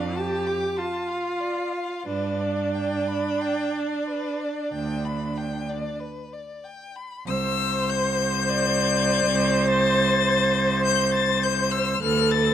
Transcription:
Already playing: F2 D4 D5 F5
0.16 G4 G5 A5
0.47 D6
0.77 F4 F5 A5
1.08 F5
1.40 D5
1.73 F5
2.06 G2 D4 B4 D5
2.41 D5
2.75 G5
3.08 B5
3.42 G5
3.75 D5
4.07 B4
4.41 D5
4.73 D2 G5
5.05 B5
5.37 G5
5.69 D5
6.00 B4
6.33 D5
6.65 G5
6.96 B5
7.26 C2 C5 E6
7.90 G6
8.49 D5
9.67 C5 A6
10.26 C5
10.85 C5 G6
11.14 A6
11.43 G6
11.71 E6
12.02 D2 A4 B4 F6
12.31 A6

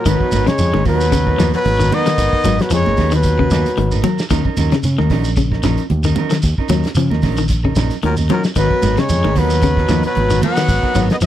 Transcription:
0.05 G#1 B2 D#3 F#3 B3 A#4 B4, muted clean electric guitar stroke, kick, closed hi-hat, high conga, shekere
0.20 B3 D#4 A#4, kick
0.32 G#1 F#3 B3 D#4 A#4, snare, closed hi-hat, high conga, shekere
0.47 C#3 G#3 C#5, snare, closed hi-hat, shekere
0.58 F2, closed hi-hat, high conga, shekere
0.73 G#1 D#3 B3 D#4 A#4, snare, high conga
0.84 D#2 B2 F#3 B3 D#4 A#4 B4, kick, open hi-hat, high conga, low conga, shekere
1.01 closed hi-hat, shekere
1.12 C#3, kick, closed hi-hat, shekere
1.26 B3 D#4 A#4, kick
1.37 D#2 F3 F#3 B3 D#4 A#4, snare, closed hi-hat, shekere
1.54 B2 F#3 B4, muted fingered electric bass stroke, snare, closed hi-hat, shekere
1.65 G#1, closed hi-hat, high conga, low conga
1.80 D#3 B3 D#4 A#4, shekere
1.91 D#3 F#3 B3 D#4 A#4 D#5, closed hi-hat, high conga, low conga, shekere
2.06 D#3, snare, closed hi-hat, shekere
2.18 G#1, kick, snare, closed hi-hat, high conga, shekere
2.33 D#4 A#4, kick
2.44 G#1 F#3 B3 D#4 A#4, closed hi-hat, high conga, shekere
2.59 B2 F#3 B4, snare, closed hi-hat, shekere
2.70 F2 C#3 F3 G#3 C#5, closed hi-hat, high conga, shekere
2.85 G#1 B3 D#4 A#4, snare, high conga
2.97 D#2 F#3 B3 D#4 A#4, kick, snare, open hi-hat, high conga, low conga, shekere
3.11 B2 D#3 F#3, closed hi-hat, shekere
3.16 B4
3.23 kick, closed hi-hat, high conga, shekere
3.39 C#3 B3 D#4 A#4, kick
3.50 D#2 F#3 B3 D#4 A#4, snare, closed hi-hat, shekere
3.66 muted fingered electric bass stroke, snare, closed hi-hat, shekere
3.77 G#1 D#3, closed hi-hat, high conga
3.91 B3 D#4 A#4, shekere
4.04 F#3 A#4, muted clean electric guitar stroke, closed hi-hat, high conga, low conga, shekere
4.19 snare, shekere
4.30 D#2 D#3 F#3 C#4 D#4 A#4, kick, closed hi-hat, shekere
4.45 C#4 D#4 A#4, kick
4.57 D#2 F#3 C#4 D#4 A#4, snare, closed hi-hat, high conga, shekere
4.72 C#3, snare, closed hi-hat, shekere
4.83 C#3, closed hi-hat, high conga, shekere
4.98 D#2 D#3 C#4 D#4 A#4, snare, high conga
5.10 A#1 F#3 C#4 D#4 A#4, kick, snare, open hi-hat, low conga, shekere
5.24 closed hi-hat, shekere
5.36 C#3, kick, closed hi-hat, high conga, shekere
5.52 C#4 D#4 A#4, kick, snare
5.63 A#1 F3 C#4 D#4 A#4, muted clean electric guitar stroke, snare, closed hi-hat, shekere
5.78 closed hi-hat, shekere
5.90 D#2, closed hi-hat, high conga, low conga
6.04 D#3 C#4 D#4 A#4, shekere
6.16 F#3 C#4 D#4 A#4, closed hi-hat, high conga, low conga, shekere
6.30 D#3, snare, closed hi-hat, shekere
6.42 D#2, kick, snare, closed hi-hat, high conga, shekere
6.58 C#4 D#4 A#4, kick
6.69 D#2 F#3 C#4 D#4 A#4, closed hi-hat, high conga, shekere
6.83 snare, closed hi-hat, shekere
6.95 C#3 F3, closed hi-hat, high conga, low conga, shekere
7.10 D#2 C#4 D#4 A#4, snare, high conga
7.22 A#1 F#3 C#4 D#4 A#4, kick, snare, open hi-hat, high conga, low conga, shekere
7.37 D#3, snare, closed hi-hat, shekere
7.48 kick, closed hi-hat, high conga, shekere
7.64 C#3 C#4 D#4 A#4, kick
7.76 A#1 F#3 C#4 D#4 A#4, snare, closed hi-hat, shekere
7.90 muted fingered electric bass stroke, snare, closed hi-hat, shekere
8.02 D#2 A#2 D#3 F#3 A#4, closed hi-hat, high conga
8.17 C#4 D#4 A#4, shekere
8.29 A#2 F#3 C#4 D#4 A#4, closed hi-hat, high conga, low conga, shekere
8.44 snare, shekere
8.55 G#1 B2 D#3 F#3 B3 D#4 A#4 B4, kick, closed hi-hat, high conga, shekere
8.71 B3 A#4, muted fingered electric bass stroke, muted clean electric guitar stroke, kick
8.82 G#1 F#3 B3 D#4 A#4, closed hi-hat, high conga, shekere
8.97 C#3 G#3 C#5, snare, closed hi-hat, shekere
9.09 F2, closed hi-hat, high conga, low conga, shekere
9.24 G#1 D#3 B3 D#4 A#4, snare, high conga
9.35 D#2 B2 F#3 B3 D#4 A#4 B4, kick, snare, open hi-hat, low conga, shekere
9.50 closed hi-hat, shekere
9.62 C#3, kick, closed hi-hat, high conga, shekere
9.77 B3 D#4 A#4, kick, snare
9.89 D#2 F3 F#3 B3 D#4 A#4, snare, closed hi-hat, shekere
10.03 B2 F#3 B4, muted fingered electric bass stroke, closed hi-hat, shekere
10.15 G#1, closed hi-hat, high conga, low conga
10.29 D#3 B3 A#4, shekere
10.41 F#3 B3 A#4 F#5, muted clean electric guitar stroke, closed hi-hat, high conga, low conga, shekere
10.45 B3
10.56 D#3, snare, closed hi-hat, shekere
10.68 G#1, kick, closed hi-hat, high conga, shekere
10.82 B3 D#4 A#4, kick
10.94 G#1 F#3 B3 D#4 A#4, closed hi-hat, high conga, shekere
11.10 D#3 B3 D#5, snare, closed hi-hat, shekere
11.21 F2 F3, closed hi-hat, shekere

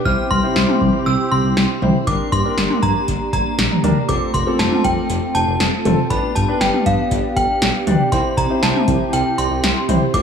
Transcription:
Already playing: G4
0.05 C2 C3 C4 E4 G4 C5 F6, kick
0.31 C2 C6, kick
0.43 E4 G4 C5
0.56 C2, snare
0.69 mid tom
0.81 C2, kick
1.06 C2 E6
1.31 C2 C6
1.44 C2
1.57 C2, snare
1.82 C2 E4 G4 C5, mid tom
2.07 G1 A#3 D4 G4 A#4 D6, kick, closed hi-hat
2.32 G2 C6, kick, closed hi-hat
2.45 D4 G4 A#4
2.58 G1, snare, closed hi-hat
2.70 mid tom
2.83 G2 A#5, kick, closed hi-hat
3.08 G1, kick, closed hi-hat
3.33 G1 A#5, kick, closed hi-hat
3.58 A#1, snare, closed hi-hat
3.71 mid tom
3.84 D2 D4 G4 A#4, closed hi-hat, mid tom
4.09 F1 A3 C4 F4 A4 D6, kick, closed hi-hat
4.34 F1 C6, kick, closed hi-hat
4.47 C4 F4 A4
4.59 F1 A5, snare, closed hi-hat
4.72 mid tom
4.84 F1 G5, kick, closed hi-hat
5.10 F1, closed hi-hat
5.35 F1 A5, closed hi-hat
5.48 F1
5.60 F1, snare, closed hi-hat
5.85 F1 C4 F4 A4, closed hi-hat, mid tom
6.10 G1 B3 D4 G4 B4 B5, kick, closed hi-hat
6.35 G2 A5, kick, closed hi-hat
6.48 D4 G4 B4
6.61 G1 G5, snare, closed hi-hat
6.74 mid tom
6.86 G2 F5, kick, closed hi-hat
7.11 G1, kick, closed hi-hat
7.36 G1 G5, kick, closed hi-hat
7.62 B1, snare, closed hi-hat
7.87 D2 D4 G4 D5, closed hi-hat, mid tom
8.12 C2 C3 C4 E4 G4 C5 C6, kick, closed hi-hat
8.37 C2 A#5, kick, closed hi-hat
8.50 E4 G4 C5
8.62 C2 A5, snare, closed hi-hat
8.75 mid tom
8.88 C2, kick, closed hi-hat
9.13 C2 G5, closed hi-hat
9.38 C2 C6, closed hi-hat
9.51 C2
9.64 C2, snare, closed hi-hat
9.89 C2 E4 G4 C5, closed hi-hat, mid tom
10.14 F1 A3 F4 A4 C5 D6, kick, closed hi-hat

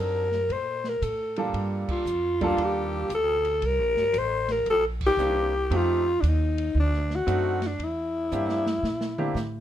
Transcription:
Already playing: F#2 F#3 C4 D4 D#4 A4
0.00 A#4
0.32 snare
0.49 A#2 C5, kick, ride
0.84 snare
0.89 A#4
1.02 A2 A4, kick, hi-hat pedal, ride
1.36 G3 A#3 D4 F4 A4, ride
1.53 G2, kick, ride
1.88 F4, muted upright bass stroke, kick, crash
2.05 F2, hi-hat pedal
2.41 G3 A#3 D4 F4 A4, kick, ride
2.57 D#2, kick, ride
2.64 G4
3.09 D2, kick, hi-hat pedal, ride
3.14 A4
3.45 ride
3.62 C2 A#4, kick, ride
3.79 A#1
3.95 G1, snare
4.13 A1, kick, hi-hat pedal, ride
4.18 C5
4.48 A#4, snare, ride
4.66 A#1, kick, ride
4.70 A4
5.01 kick, crash
5.07 G4
5.17 C2 A#3 C4 D4 E4 G4, hi-hat pedal
5.70 F2 A3 C4 D#4 F4 G4, ride
5.76 F4
6.21 D#2 D4, hi-hat pedal, ride
6.28 D#4
6.58 ride
6.75 D2, kick
6.80 D4
6.93 snare
7.10 snare
7.15 F#4
7.26 F#2 A3 C4 D4 D#4 F#4, kick, hi-hat pedal, ride
7.62 snare, ride
7.67 D4
7.79 E2, kick, ride
7.84 E4
8.32 G2 A#3 C4 D4 E4 G4, hi-hat pedal
8.49 snare
8.66 snare
8.83 A#2, snare
9.01 snare
9.18 A#3 C4 D4 E4 G4, mid tom
9.35 A2, snare, hi-hat pedal

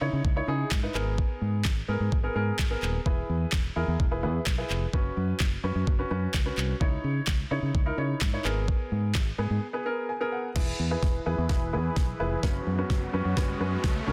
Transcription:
0.01 C#3 D#4 E4 C#5
0.13 C#3
0.25 C#2, kick
0.36 D#4 E4 C#5
0.48 C#3 D#4 E4 G#4
0.71 G#2, kick, snare, clap
0.83 D#4 E4 B4
0.95 G#1 B3 G#4 A#4, clap
1.18 kick
1.41 G#2
1.65 G#1, kick, snare, clap
1.88 G#2 B3 G#4 A#4
2.00 G#2
2.12 G#1, kick
2.23 B3 G#4 A#4
2.35 G#2 B3 G#4 A#4
2.59 G#1, kick, snare, clap
2.70 B3 G#4 A#4
2.82 D#1, clap
3.06 E1 E4 G#4 B4, kick
3.29 E2
3.52 E1, kick, snare, clap
3.76 E2 E4 G#4 A#4
3.88 E2
4.00 E1, kick
4.11 E4 G#4 B4
4.23 E2 E4 G#4 B4
4.47 B1, kick, snare, clap
4.58 E4 G#4 B4
4.70 F1, clap
4.93 F#1 C#4 F#4 B4, kick
5.17 F#2
5.40 F#1, kick, snare, clap
5.63 F#2 C#4 F#4 B4
5.75 F#2
5.87 F#1, kick
5.99 C#4 F#4 B4
6.10 F#2 C#4 F#4 B4
6.34 C#2, kick, snare, clap
6.45 C#4 F#4 B4
6.57 C2, clap
6.80 C#2 D#4 E4 C#5, kick
7.04 C#3
7.27 C#2, kick, snare, clap
7.51 C#3 D#4 E4 C#5
7.62 C#3
7.75 C#2, kick
7.86 D#4 E4 A#4
7.98 C#3 D#4 E4 C#5
8.21 G#2, kick, snare, clap
8.33 D#4 E4 C#5
8.45 G#1 B3 G#4 A#4, clap
8.68 kick
8.92 G#2
9.15 G#1, kick, snare, clap
9.38 G#2 B3 G#4 B4
9.50 G#2
9.73 B3 G#4 B4
9.86 B3 G#4 A#4
10.09 G#5
10.21 B3 G#4 A#4
10.32 F#5
10.56 E1 E3 E4 G#4 B4, kick, snare, crash, riser
10.79 E2
10.91 E4 G#4 B4
11.03 E1, kick, snare
11.26 E2 E4 G#4 B4
11.38 E2
11.49 E1 E4 G#4 B4, kick, snare
11.73 E2 E4 G#4 B4
11.96 B1, kick, snare
12.20 F1 E4 G#4 B4
12.43 F#1 B3 C#4 F#4 B4, kick, snare
12.67 F#2
12.78 C#4 F#4 B4
12.90 F#1, kick, snare
13.13 F#2 C#4 F#4 B4
13.25 F#2
13.37 F#1 C#4 F#4 B4, kick, snare
13.60 F#2 C#4 F#4 B4
13.84 C#2, kick, snare
14.07 C2 C#4 F#4 A#4

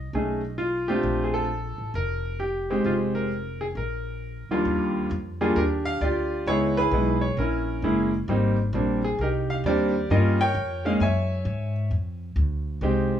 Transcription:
Already playing: D#5
0.13 B1 A3 C#4 D#4 G#4
0.58 F4
0.88 A3 C4 D4 F4 G4
1.03 A#1
1.24 G#4
1.34 A4
1.78 A1
1.94 F1 A#4
2.40 G4
2.70 G#3 C4 D#4 G4
2.84 F1 F4
3.15 A#4
3.61 G#4
3.75 A#1 A#4
4.49 D#2 G3 A#3 D4 F4, muted upright bass stroke
4.65 D#2
5.11 F2
5.41 G3 A#3 D4 F4 G#4
5.56 D#2 D4 G4 A#4
5.85 F5
6.01 D2 F4 G4 D5
6.47 C#2 G#3 B3 D#4 E4 G#4 C#5
6.77 E4 G#4 B4
6.91 B1 G#3 B3 D#4 E4
7.21 C#5
7.37 A#1 C#4 E4 A#4
7.82 F#1 G#3 A#3 C#4 E4
8.28 G#1 G3 A#3 C4 D#4
8.73 A#1 G3 A#3 C4 D4
9.04 G#4
9.19 C2 D#4 G4 A#4
9.50 F5
9.64 D#2 G3 A#3 C4 D4 G4 A#4 D5
10.10 G2 G3 A#3 C#4 F4 A#4 D#5
10.41 A#4 C#5 G5
10.55 F2
10.85 G#3 A#3 C#4 D#4 F5
11.00 F#2 C#5 E5 G#5
11.45 G#2
11.91 F2
12.36 D2
12.81 C2 G#3 C4 D#4 G4

